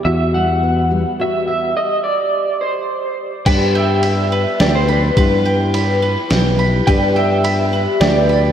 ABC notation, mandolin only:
X:1
M:3/4
L:1/8
Q:1/4=106
K:G
V:1 name="Mandolin"
z6 | z6 | B g b B g b | B g b B g b |
B g b B g b |]